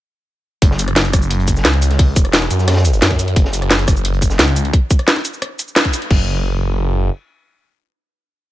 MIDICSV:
0, 0, Header, 1, 3, 480
1, 0, Start_track
1, 0, Tempo, 342857
1, 868, Time_signature, 4, 2, 24, 8
1, 11922, End_track
2, 0, Start_track
2, 0, Title_t, "Detuned saw bass"
2, 0, Program_c, 0, 39
2, 868, Note_on_c, 0, 30, 93
2, 1569, Note_off_c, 0, 30, 0
2, 1588, Note_on_c, 0, 30, 96
2, 2289, Note_off_c, 0, 30, 0
2, 2308, Note_on_c, 0, 37, 97
2, 3009, Note_off_c, 0, 37, 0
2, 3028, Note_on_c, 0, 28, 99
2, 3489, Note_off_c, 0, 28, 0
2, 3508, Note_on_c, 0, 42, 92
2, 4209, Note_off_c, 0, 42, 0
2, 4228, Note_on_c, 0, 42, 95
2, 4689, Note_off_c, 0, 42, 0
2, 4708, Note_on_c, 0, 30, 94
2, 5409, Note_off_c, 0, 30, 0
2, 5428, Note_on_c, 0, 30, 97
2, 6129, Note_off_c, 0, 30, 0
2, 6148, Note_on_c, 0, 37, 94
2, 6609, Note_off_c, 0, 37, 0
2, 8548, Note_on_c, 0, 30, 98
2, 9932, Note_off_c, 0, 30, 0
2, 11922, End_track
3, 0, Start_track
3, 0, Title_t, "Drums"
3, 868, Note_on_c, 9, 36, 118
3, 868, Note_on_c, 9, 42, 97
3, 993, Note_on_c, 9, 38, 56
3, 1008, Note_off_c, 9, 36, 0
3, 1008, Note_off_c, 9, 42, 0
3, 1104, Note_on_c, 9, 42, 70
3, 1108, Note_off_c, 9, 42, 0
3, 1108, Note_on_c, 9, 42, 70
3, 1108, Note_on_c, 9, 82, 62
3, 1133, Note_off_c, 9, 38, 0
3, 1228, Note_off_c, 9, 42, 0
3, 1228, Note_on_c, 9, 37, 35
3, 1228, Note_on_c, 9, 42, 38
3, 1248, Note_off_c, 9, 82, 0
3, 1348, Note_off_c, 9, 42, 0
3, 1348, Note_on_c, 9, 38, 119
3, 1348, Note_on_c, 9, 42, 101
3, 1353, Note_off_c, 9, 42, 0
3, 1353, Note_on_c, 9, 42, 91
3, 1368, Note_off_c, 9, 37, 0
3, 1468, Note_off_c, 9, 42, 0
3, 1468, Note_on_c, 9, 42, 39
3, 1472, Note_off_c, 9, 42, 0
3, 1472, Note_on_c, 9, 42, 44
3, 1488, Note_off_c, 9, 38, 0
3, 1588, Note_off_c, 9, 42, 0
3, 1588, Note_on_c, 9, 36, 108
3, 1588, Note_on_c, 9, 37, 59
3, 1588, Note_on_c, 9, 42, 72
3, 1588, Note_on_c, 9, 82, 58
3, 1593, Note_off_c, 9, 42, 0
3, 1593, Note_on_c, 9, 42, 66
3, 1708, Note_off_c, 9, 82, 0
3, 1708, Note_on_c, 9, 82, 28
3, 1728, Note_off_c, 9, 36, 0
3, 1728, Note_off_c, 9, 37, 0
3, 1733, Note_off_c, 9, 42, 0
3, 1828, Note_on_c, 9, 42, 82
3, 1848, Note_off_c, 9, 82, 0
3, 1955, Note_off_c, 9, 42, 0
3, 1955, Note_on_c, 9, 42, 50
3, 2055, Note_off_c, 9, 42, 0
3, 2055, Note_on_c, 9, 42, 67
3, 2068, Note_off_c, 9, 42, 0
3, 2068, Note_on_c, 9, 36, 64
3, 2068, Note_on_c, 9, 42, 68
3, 2068, Note_on_c, 9, 82, 60
3, 2188, Note_off_c, 9, 82, 0
3, 2188, Note_on_c, 9, 82, 28
3, 2200, Note_on_c, 9, 38, 46
3, 2208, Note_off_c, 9, 36, 0
3, 2208, Note_off_c, 9, 42, 0
3, 2305, Note_on_c, 9, 42, 84
3, 2308, Note_off_c, 9, 38, 0
3, 2308, Note_off_c, 9, 42, 0
3, 2308, Note_on_c, 9, 38, 108
3, 2308, Note_on_c, 9, 42, 100
3, 2328, Note_off_c, 9, 82, 0
3, 2428, Note_off_c, 9, 42, 0
3, 2428, Note_on_c, 9, 42, 39
3, 2448, Note_off_c, 9, 38, 0
3, 2548, Note_off_c, 9, 42, 0
3, 2548, Note_on_c, 9, 42, 73
3, 2548, Note_on_c, 9, 82, 61
3, 2557, Note_off_c, 9, 42, 0
3, 2557, Note_on_c, 9, 42, 70
3, 2666, Note_on_c, 9, 38, 39
3, 2668, Note_off_c, 9, 42, 0
3, 2668, Note_on_c, 9, 42, 39
3, 2688, Note_off_c, 9, 82, 0
3, 2786, Note_on_c, 9, 46, 73
3, 2788, Note_off_c, 9, 42, 0
3, 2788, Note_on_c, 9, 36, 124
3, 2788, Note_on_c, 9, 42, 95
3, 2806, Note_off_c, 9, 38, 0
3, 2926, Note_off_c, 9, 46, 0
3, 2928, Note_off_c, 9, 36, 0
3, 2928, Note_off_c, 9, 42, 0
3, 3025, Note_on_c, 9, 42, 65
3, 3028, Note_off_c, 9, 42, 0
3, 3028, Note_on_c, 9, 36, 119
3, 3028, Note_on_c, 9, 42, 69
3, 3028, Note_on_c, 9, 82, 59
3, 3148, Note_off_c, 9, 42, 0
3, 3148, Note_on_c, 9, 37, 33
3, 3148, Note_on_c, 9, 42, 37
3, 3168, Note_off_c, 9, 36, 0
3, 3168, Note_off_c, 9, 82, 0
3, 3268, Note_off_c, 9, 42, 0
3, 3268, Note_on_c, 9, 38, 127
3, 3268, Note_on_c, 9, 42, 96
3, 3269, Note_off_c, 9, 42, 0
3, 3269, Note_on_c, 9, 42, 100
3, 3273, Note_off_c, 9, 38, 0
3, 3273, Note_on_c, 9, 38, 127
3, 3288, Note_off_c, 9, 37, 0
3, 3388, Note_off_c, 9, 38, 0
3, 3388, Note_off_c, 9, 42, 0
3, 3388, Note_on_c, 9, 38, 39
3, 3388, Note_on_c, 9, 42, 39
3, 3508, Note_off_c, 9, 42, 0
3, 3508, Note_on_c, 9, 42, 68
3, 3508, Note_on_c, 9, 82, 57
3, 3528, Note_off_c, 9, 38, 0
3, 3621, Note_on_c, 9, 38, 42
3, 3628, Note_off_c, 9, 82, 0
3, 3628, Note_on_c, 9, 82, 27
3, 3648, Note_off_c, 9, 42, 0
3, 3748, Note_on_c, 9, 37, 60
3, 3748, Note_on_c, 9, 42, 101
3, 3749, Note_off_c, 9, 38, 0
3, 3749, Note_on_c, 9, 38, 89
3, 3752, Note_off_c, 9, 42, 0
3, 3752, Note_on_c, 9, 42, 64
3, 3768, Note_off_c, 9, 82, 0
3, 3811, Note_off_c, 9, 42, 0
3, 3811, Note_on_c, 9, 42, 64
3, 3819, Note_off_c, 9, 38, 0
3, 3819, Note_on_c, 9, 38, 95
3, 3867, Note_off_c, 9, 38, 0
3, 3867, Note_on_c, 9, 38, 106
3, 3874, Note_off_c, 9, 42, 0
3, 3874, Note_on_c, 9, 42, 83
3, 3888, Note_off_c, 9, 37, 0
3, 3985, Note_off_c, 9, 42, 0
3, 3985, Note_on_c, 9, 42, 64
3, 3988, Note_off_c, 9, 42, 0
3, 3988, Note_on_c, 9, 42, 67
3, 3988, Note_on_c, 9, 82, 60
3, 4007, Note_off_c, 9, 38, 0
3, 4109, Note_off_c, 9, 42, 0
3, 4109, Note_off_c, 9, 82, 0
3, 4109, Note_on_c, 9, 42, 46
3, 4109, Note_on_c, 9, 82, 27
3, 4221, Note_off_c, 9, 42, 0
3, 4221, Note_on_c, 9, 42, 85
3, 4228, Note_off_c, 9, 42, 0
3, 4228, Note_on_c, 9, 38, 121
3, 4228, Note_on_c, 9, 42, 91
3, 4232, Note_off_c, 9, 38, 0
3, 4232, Note_on_c, 9, 38, 115
3, 4249, Note_off_c, 9, 82, 0
3, 4348, Note_on_c, 9, 36, 66
3, 4349, Note_off_c, 9, 42, 0
3, 4349, Note_on_c, 9, 42, 39
3, 4372, Note_off_c, 9, 38, 0
3, 4465, Note_off_c, 9, 42, 0
3, 4465, Note_on_c, 9, 42, 65
3, 4468, Note_off_c, 9, 42, 0
3, 4468, Note_on_c, 9, 42, 68
3, 4468, Note_on_c, 9, 82, 60
3, 4488, Note_off_c, 9, 36, 0
3, 4589, Note_off_c, 9, 42, 0
3, 4589, Note_on_c, 9, 42, 39
3, 4608, Note_off_c, 9, 82, 0
3, 4708, Note_off_c, 9, 42, 0
3, 4708, Note_on_c, 9, 36, 127
3, 4708, Note_on_c, 9, 42, 91
3, 4826, Note_on_c, 9, 38, 60
3, 4848, Note_off_c, 9, 36, 0
3, 4848, Note_off_c, 9, 42, 0
3, 4943, Note_on_c, 9, 42, 72
3, 4948, Note_off_c, 9, 42, 0
3, 4948, Note_on_c, 9, 42, 69
3, 4948, Note_on_c, 9, 82, 57
3, 4966, Note_off_c, 9, 38, 0
3, 5068, Note_off_c, 9, 42, 0
3, 5068, Note_on_c, 9, 37, 34
3, 5068, Note_on_c, 9, 42, 34
3, 5088, Note_off_c, 9, 82, 0
3, 5188, Note_off_c, 9, 42, 0
3, 5188, Note_on_c, 9, 38, 127
3, 5188, Note_on_c, 9, 42, 91
3, 5193, Note_off_c, 9, 38, 0
3, 5193, Note_off_c, 9, 42, 0
3, 5193, Note_on_c, 9, 38, 110
3, 5193, Note_on_c, 9, 42, 95
3, 5208, Note_off_c, 9, 37, 0
3, 5308, Note_off_c, 9, 42, 0
3, 5308, Note_on_c, 9, 42, 38
3, 5313, Note_off_c, 9, 42, 0
3, 5313, Note_on_c, 9, 42, 48
3, 5333, Note_off_c, 9, 38, 0
3, 5428, Note_off_c, 9, 42, 0
3, 5428, Note_on_c, 9, 36, 110
3, 5428, Note_on_c, 9, 37, 58
3, 5428, Note_on_c, 9, 42, 65
3, 5428, Note_on_c, 9, 82, 58
3, 5430, Note_off_c, 9, 42, 0
3, 5430, Note_on_c, 9, 42, 75
3, 5548, Note_off_c, 9, 82, 0
3, 5548, Note_on_c, 9, 82, 27
3, 5568, Note_off_c, 9, 36, 0
3, 5568, Note_off_c, 9, 37, 0
3, 5570, Note_off_c, 9, 42, 0
3, 5667, Note_on_c, 9, 42, 83
3, 5668, Note_off_c, 9, 42, 0
3, 5668, Note_on_c, 9, 42, 92
3, 5688, Note_off_c, 9, 82, 0
3, 5789, Note_off_c, 9, 42, 0
3, 5789, Note_on_c, 9, 42, 47
3, 5902, Note_off_c, 9, 42, 0
3, 5902, Note_on_c, 9, 42, 67
3, 5908, Note_off_c, 9, 42, 0
3, 5908, Note_on_c, 9, 36, 67
3, 5908, Note_on_c, 9, 42, 67
3, 5908, Note_on_c, 9, 82, 60
3, 6021, Note_on_c, 9, 38, 46
3, 6028, Note_off_c, 9, 82, 0
3, 6028, Note_on_c, 9, 82, 27
3, 6048, Note_off_c, 9, 36, 0
3, 6048, Note_off_c, 9, 42, 0
3, 6145, Note_off_c, 9, 38, 0
3, 6145, Note_on_c, 9, 38, 105
3, 6145, Note_on_c, 9, 42, 88
3, 6148, Note_off_c, 9, 38, 0
3, 6148, Note_off_c, 9, 42, 0
3, 6148, Note_on_c, 9, 38, 127
3, 6148, Note_on_c, 9, 42, 91
3, 6168, Note_off_c, 9, 82, 0
3, 6268, Note_off_c, 9, 42, 0
3, 6268, Note_on_c, 9, 42, 37
3, 6288, Note_off_c, 9, 38, 0
3, 6388, Note_off_c, 9, 42, 0
3, 6388, Note_on_c, 9, 42, 67
3, 6388, Note_on_c, 9, 82, 57
3, 6508, Note_off_c, 9, 42, 0
3, 6508, Note_on_c, 9, 42, 36
3, 6528, Note_off_c, 9, 82, 0
3, 6628, Note_off_c, 9, 42, 0
3, 6628, Note_on_c, 9, 36, 122
3, 6628, Note_on_c, 9, 42, 92
3, 6768, Note_off_c, 9, 36, 0
3, 6768, Note_off_c, 9, 42, 0
3, 6868, Note_on_c, 9, 36, 118
3, 6868, Note_on_c, 9, 42, 65
3, 6868, Note_on_c, 9, 82, 59
3, 6988, Note_off_c, 9, 42, 0
3, 6988, Note_on_c, 9, 37, 33
3, 6988, Note_on_c, 9, 42, 35
3, 7008, Note_off_c, 9, 36, 0
3, 7008, Note_off_c, 9, 82, 0
3, 7108, Note_off_c, 9, 42, 0
3, 7108, Note_on_c, 9, 38, 126
3, 7108, Note_on_c, 9, 42, 91
3, 7128, Note_off_c, 9, 37, 0
3, 7228, Note_off_c, 9, 38, 0
3, 7228, Note_off_c, 9, 42, 0
3, 7228, Note_on_c, 9, 38, 39
3, 7228, Note_on_c, 9, 42, 36
3, 7348, Note_off_c, 9, 42, 0
3, 7348, Note_on_c, 9, 42, 62
3, 7348, Note_on_c, 9, 82, 58
3, 7368, Note_off_c, 9, 38, 0
3, 7468, Note_off_c, 9, 82, 0
3, 7468, Note_on_c, 9, 82, 27
3, 7488, Note_off_c, 9, 42, 0
3, 7587, Note_on_c, 9, 37, 55
3, 7587, Note_on_c, 9, 42, 94
3, 7608, Note_off_c, 9, 82, 0
3, 7727, Note_off_c, 9, 37, 0
3, 7727, Note_off_c, 9, 42, 0
3, 7828, Note_on_c, 9, 42, 62
3, 7828, Note_on_c, 9, 82, 60
3, 7948, Note_off_c, 9, 82, 0
3, 7948, Note_on_c, 9, 82, 27
3, 7968, Note_off_c, 9, 42, 0
3, 8067, Note_on_c, 9, 38, 125
3, 8067, Note_on_c, 9, 42, 89
3, 8088, Note_off_c, 9, 82, 0
3, 8188, Note_off_c, 9, 42, 0
3, 8188, Note_on_c, 9, 36, 64
3, 8188, Note_on_c, 9, 42, 36
3, 8207, Note_off_c, 9, 38, 0
3, 8307, Note_off_c, 9, 42, 0
3, 8307, Note_on_c, 9, 42, 63
3, 8307, Note_on_c, 9, 82, 57
3, 8328, Note_off_c, 9, 36, 0
3, 8427, Note_off_c, 9, 42, 0
3, 8427, Note_on_c, 9, 42, 36
3, 8447, Note_off_c, 9, 82, 0
3, 8547, Note_on_c, 9, 49, 87
3, 8548, Note_on_c, 9, 36, 115
3, 8567, Note_off_c, 9, 42, 0
3, 8687, Note_off_c, 9, 49, 0
3, 8688, Note_off_c, 9, 36, 0
3, 11922, End_track
0, 0, End_of_file